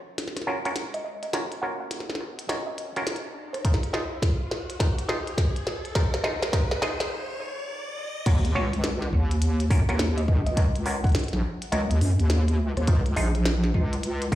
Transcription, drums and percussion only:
0.18 snare, closed hi-hat
0.28 snare
0.37 cross-stick, snare, closed hi-hat
0.42 snare
0.65 closed hi-hat
0.76 snare, closed hi-hat
0.94 closed hi-hat
1.23 closed hi-hat
1.33 snare, closed hi-hat
1.52 closed hi-hat
1.91 snare, closed hi-hat
2.00 snare
2.10 snare
2.15 snare
2.21 cross-stick
2.39 closed hi-hat
2.49 snare, closed hi-hat
2.78 closed hi-hat
2.96 closed hi-hat
3.07 snare, closed hi-hat
3.16 closed hi-hat
3.54 cross-stick, closed hi-hat
3.65 kick, closed hi-hat
3.74 snare
3.83 closed hi-hat
3.94 snare
4.22 kick, snare, closed hi-hat
4.51 snare
4.70 closed hi-hat
4.80 kick, snare, closed hi-hat
4.99 closed hi-hat
5.09 snare
5.27 closed hi-hat
5.38 kick, snare, closed hi-hat
5.56 closed hi-hat
5.67 snare
5.85 closed hi-hat
5.95 kick, snare, closed hi-hat
6.14 snare, closed hi-hat
6.24 snare
6.42 snare
6.53 kick, snare, closed hi-hat
6.71 snare
6.82 snare
7.00 snare, closed hi-hat
8.26 kick, closed hi-hat, crash
8.45 closed hi-hat
8.73 closed hi-hat
8.84 snare, closed hi-hat
9.02 snare
9.13 kick
9.31 closed hi-hat
9.42 closed hi-hat
9.60 closed hi-hat
9.70 kick, open hi-hat
9.89 cross-stick, closed hi-hat
9.99 snare, closed hi-hat
10.18 closed hi-hat
10.28 kick
10.47 closed hi-hat
10.57 kick, closed hi-hat
10.76 closed hi-hat
10.86 open hi-hat
11.04 kick, closed hi-hat
11.07 closed hi-hat
11.09 closed hi-hat
11.12 snare, closed hi-hat
11.15 closed hi-hat
11.19 closed hi-hat
11.24 closed hi-hat
11.28 closed hi-hat
11.33 snare
11.62 closed hi-hat
11.72 closed hi-hat
11.91 closed hi-hat
12.01 snare, open hi-hat
12.20 closed hi-hat
12.30 snare, closed hi-hat
12.48 closed hi-hat
12.77 cross-stick, closed hi-hat
12.87 kick, closed hi-hat
13.06 closed hi-hat
13.16 open hi-hat
13.35 closed hi-hat
13.45 snare, closed hi-hat
13.64 snare
13.74 kick
13.93 closed hi-hat
14.03 closed hi-hat
14.22 closed hi-hat

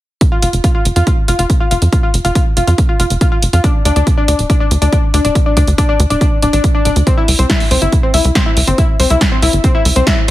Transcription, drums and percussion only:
0.21 kick, closed hi-hat
0.42 closed hi-hat
0.53 closed hi-hat
0.64 kick, closed hi-hat
0.85 closed hi-hat
0.96 closed hi-hat
1.07 kick, closed hi-hat
1.28 closed hi-hat
1.39 closed hi-hat
1.50 kick, closed hi-hat
1.71 closed hi-hat
1.82 closed hi-hat
1.93 kick, closed hi-hat
2.14 closed hi-hat
2.25 closed hi-hat
2.35 kick, closed hi-hat
2.57 closed hi-hat
2.67 closed hi-hat
2.78 kick, closed hi-hat
3.00 closed hi-hat
3.10 closed hi-hat
3.21 kick, closed hi-hat
3.42 closed hi-hat
3.53 closed hi-hat
3.64 kick, closed hi-hat
3.85 closed hi-hat
3.96 closed hi-hat
4.07 kick, closed hi-hat
4.28 closed hi-hat
4.39 closed hi-hat
4.50 kick, closed hi-hat
4.71 closed hi-hat
4.82 closed hi-hat
4.92 kick, closed hi-hat
5.14 closed hi-hat
5.25 closed hi-hat
5.35 kick, closed hi-hat
5.57 kick, closed hi-hat
5.67 closed hi-hat
5.78 kick, closed hi-hat
6.00 closed hi-hat
6.10 closed hi-hat
6.21 kick, closed hi-hat
6.42 closed hi-hat
6.53 closed hi-hat
6.64 kick, closed hi-hat
6.85 closed hi-hat
6.96 closed hi-hat
7.07 kick, closed hi-hat
7.28 open hi-hat
7.39 closed hi-hat
7.50 kick, snare, closed hi-hat
7.60 open hi-hat
7.71 open hi-hat
7.82 closed hi-hat
7.92 kick, closed hi-hat
8.14 open hi-hat
8.25 closed hi-hat
8.35 kick, snare, closed hi-hat
8.57 open hi-hat
8.67 closed hi-hat
8.78 kick, closed hi-hat
9.00 open hi-hat
9.10 closed hi-hat
9.21 kick, snare, closed hi-hat
9.42 open hi-hat
9.53 closed hi-hat
9.64 kick, closed hi-hat
9.85 open hi-hat
9.96 closed hi-hat
10.07 kick, snare, closed hi-hat

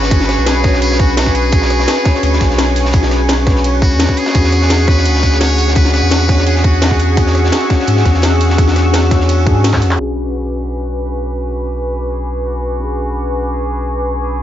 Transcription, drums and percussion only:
0.02 snare
0.11 kick, closed hi-hat, ride bell
0.20 snare
0.29 cross-stick, snare, closed hi-hat
0.46 snare, closed hi-hat, ride bell
0.63 kick, cross-stick, snare, closed hi-hat
0.73 snare
0.82 closed hi-hat, ride bell
0.92 snare
0.99 kick, closed hi-hat
1.09 closed hi-hat
1.17 snare, closed hi-hat, ride bell
1.26 kick, snare
1.35 closed hi-hat, open hi-hat
1.52 kick, closed hi-hat, ride bell
1.62 snare
1.70 cross-stick, closed hi-hat
1.79 snare
1.88 snare, closed hi-hat, ride bell
1.98 closed hi-hat
2.05 kick, cross-stick, snare, closed hi-hat
2.15 snare
2.23 cross-stick, closed hi-hat, ride bell
2.33 snare
2.41 kick, snare, closed hi-hat
2.50 snare
2.58 snare, closed hi-hat, ride bell
2.76 open hi-hat
2.85 snare
2.93 kick, closed hi-hat, ride bell
3.02 snare
3.11 cross-stick, snare, closed hi-hat
3.29 snare, closed hi-hat, ride bell
3.47 kick, cross-stick, snare, closed hi-hat
3.56 snare
3.64 closed hi-hat, ride bell
3.82 kick, closed hi-hat
3.92 closed hi-hat
4.00 snare, closed hi-hat, ride bell
4.09 kick
4.17 open hi-hat
4.26 snare, closed hi-hat
4.35 kick, closed hi-hat, ride bell
4.44 snare
4.52 cross-stick, closed hi-hat
4.61 snare
4.70 snare, closed hi-hat, ride bell
4.79 closed hi-hat
4.87 kick, cross-stick, snare, closed hi-hat
4.97 snare
5.05 cross-stick, closed hi-hat, ride bell
5.15 snare
5.23 kick, snare, closed hi-hat
5.32 snare
5.41 snare, closed hi-hat, ride bell
5.58 open hi-hat
5.68 snare
5.75 kick, closed hi-hat, ride bell
5.85 snare
5.93 cross-stick, snare, closed hi-hat
6.11 snare, closed hi-hat, ride bell
6.29 kick, cross-stick, snare, closed hi-hat
6.38 snare
6.47 closed hi-hat, ride bell
6.55 snare
6.64 kick, closed hi-hat
6.73 closed hi-hat
6.82 snare, closed hi-hat, ride bell
6.91 kick, snare
7.00 closed hi-hat, open hi-hat
7.17 kick, closed hi-hat, ride bell
7.26 snare
7.35 cross-stick, closed hi-hat
7.44 snare
7.52 snare, closed hi-hat, ride bell
7.61 closed hi-hat
7.70 kick, cross-stick, snare, closed hi-hat
7.79 snare
7.87 cross-stick, closed hi-hat, ride bell
7.97 snare
8.05 kick, snare, closed hi-hat
8.14 snare
8.22 snare, closed hi-hat, ride bell
8.41 open hi-hat
8.50 snare
8.58 kick, closed hi-hat, ride bell
8.68 snare
8.76 cross-stick, snare, closed hi-hat
8.94 snare, closed hi-hat, ride bell
9.11 kick, cross-stick, snare, closed hi-hat
9.20 snare
9.29 closed hi-hat, ride bell
9.47 kick, closed hi-hat
9.64 snare, closed hi-hat, open hi-hat, ride bell
9.73 kick, snare, clap, closed hi-hat
9.82 open hi-hat
9.91 clap, open hi-hat
10.00 crash

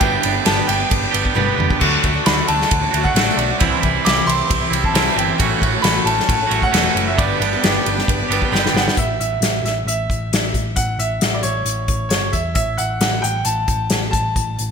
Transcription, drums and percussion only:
0.01 kick, ride
0.23 ride
0.46 snare, ride
0.69 ride
0.91 kick, ride
1.14 ride
1.25 kick
1.38 high tom
1.60 mid tom
1.71 kick
1.81 kick, crash
2.04 kick, ride
2.26 snare, ride
2.48 ride
2.61 snare
2.71 kick, ride
2.94 ride
3.05 kick
3.16 snare, ride
3.29 snare
3.39 ride
3.60 kick, ride
3.83 kick, ride
4.06 snare, ride
4.29 ride
4.51 kick, ride
4.73 ride
4.84 kick
4.95 snare, ride
5.08 snare
5.19 ride
5.40 kick, ride
5.62 kick, ride
5.84 snare, ride
6.07 ride
6.20 snare
6.29 kick, ride
6.51 ride
6.62 kick
6.74 snare, ride
6.97 ride
7.19 kick, ride
7.42 ride
7.64 snare, ride
7.86 ride
7.98 snare
8.08 kick, ride
8.32 ride
8.42 kick
8.55 snare
8.66 snare
8.76 snare
8.88 snare
8.97 kick, closed hi-hat
9.21 closed hi-hat
9.42 snare, closed hi-hat
9.66 snare, closed hi-hat
9.88 closed hi-hat
10.10 kick, closed hi-hat
10.33 snare, closed hi-hat
10.54 kick, closed hi-hat
10.76 kick, closed hi-hat
10.99 closed hi-hat
11.21 snare, closed hi-hat
11.43 closed hi-hat
11.66 closed hi-hat
11.88 kick, closed hi-hat
12.10 snare, closed hi-hat
12.33 kick, closed hi-hat
12.55 kick, closed hi-hat
12.78 closed hi-hat
13.01 snare, closed hi-hat
13.24 closed hi-hat
13.45 closed hi-hat
13.68 kick, closed hi-hat
13.90 snare, closed hi-hat
14.13 kick, closed hi-hat
14.36 kick, closed hi-hat
14.59 closed hi-hat

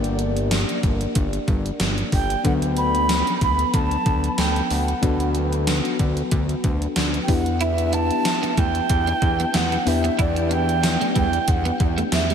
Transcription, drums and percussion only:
0.04 closed hi-hat
0.19 closed hi-hat
0.37 closed hi-hat
0.51 snare, closed hi-hat, tambourine
0.69 closed hi-hat
0.83 kick, closed hi-hat
1.01 closed hi-hat
1.15 kick, closed hi-hat
1.33 closed hi-hat
1.48 kick, closed hi-hat
1.66 closed hi-hat
1.80 snare, closed hi-hat, tambourine
1.98 closed hi-hat
2.12 kick, open hi-hat
2.30 closed hi-hat
2.45 kick, closed hi-hat
2.62 closed hi-hat
2.77 closed hi-hat
2.95 closed hi-hat
3.09 snare, closed hi-hat, tambourine
3.27 closed hi-hat
3.41 kick, closed hi-hat
3.59 closed hi-hat
3.74 kick, closed hi-hat
3.91 closed hi-hat
4.06 kick, closed hi-hat
4.24 closed hi-hat
4.38 snare, closed hi-hat, tambourine
4.56 closed hi-hat
4.70 open hi-hat
4.88 closed hi-hat
5.03 kick, closed hi-hat
5.20 closed hi-hat
5.35 closed hi-hat
5.53 closed hi-hat
5.67 snare, closed hi-hat, tambourine
5.85 closed hi-hat
5.99 kick, closed hi-hat
6.17 closed hi-hat
6.31 kick, closed hi-hat
6.49 closed hi-hat
6.64 kick, closed hi-hat
6.82 closed hi-hat
6.96 snare, closed hi-hat, tambourine
7.14 closed hi-hat
7.28 kick, open hi-hat
7.46 closed hi-hat
7.61 closed hi-hat
7.78 closed hi-hat
7.93 closed hi-hat
8.11 closed hi-hat
8.25 snare, closed hi-hat, tambourine
8.43 closed hi-hat
8.57 kick, closed hi-hat
8.75 closed hi-hat
8.89 kick, closed hi-hat
9.07 closed hi-hat
9.22 kick, closed hi-hat
9.40 closed hi-hat
9.54 snare, closed hi-hat, tambourine
9.72 closed hi-hat
9.87 open hi-hat
10.05 closed hi-hat
10.19 kick, closed hi-hat
10.36 closed hi-hat
10.51 closed hi-hat
10.69 closed hi-hat
10.83 snare, closed hi-hat, tambourine
11.01 closed hi-hat
11.16 kick, closed hi-hat
11.33 closed hi-hat
11.48 kick, closed hi-hat
11.65 closed hi-hat
11.80 kick, closed hi-hat
11.98 closed hi-hat
12.12 snare, closed hi-hat, tambourine
12.30 closed hi-hat

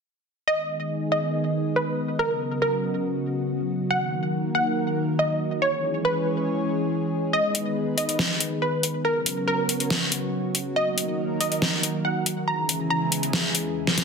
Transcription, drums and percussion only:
7.55 closed hi-hat
7.98 closed hi-hat
8.09 closed hi-hat
8.19 snare
8.40 closed hi-hat
8.83 closed hi-hat
9.26 closed hi-hat
9.69 closed hi-hat
9.80 closed hi-hat
9.90 snare
10.12 closed hi-hat
10.55 closed hi-hat
10.98 closed hi-hat
11.41 closed hi-hat
11.52 closed hi-hat
11.62 snare
11.83 closed hi-hat
12.26 closed hi-hat
12.69 closed hi-hat
13.12 closed hi-hat
13.23 closed hi-hat
13.33 snare
13.55 closed hi-hat
13.87 snare
13.98 snare, closed hi-hat

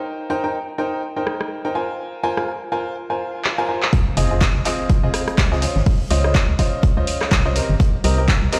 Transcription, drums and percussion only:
1.27 cross-stick
1.41 cross-stick
2.37 cross-stick
3.44 clap
3.83 clap
3.93 kick, closed hi-hat
4.17 closed hi-hat, open hi-hat
4.41 kick, snare, clap, closed hi-hat
4.65 clap, closed hi-hat, open hi-hat
4.89 kick, closed hi-hat
5.14 cross-stick, closed hi-hat, open hi-hat
5.27 cross-stick, closed hi-hat
5.38 kick, snare, clap, closed hi-hat
5.52 snare
5.62 closed hi-hat, open hi-hat
5.77 snare
5.86 kick, open hi-hat
6.11 snare, closed hi-hat, open hi-hat
6.24 cross-stick
6.35 kick, snare, clap, closed hi-hat
6.59 kick, closed hi-hat, open hi-hat
6.83 kick, closed hi-hat
7.07 closed hi-hat, open hi-hat
7.21 cross-stick, clap
7.31 kick, snare, clap, closed hi-hat
7.56 closed hi-hat, open hi-hat
7.80 kick, closed hi-hat
8.04 closed hi-hat, open hi-hat
8.28 kick, snare, clap, closed hi-hat
8.53 clap, closed hi-hat, open hi-hat

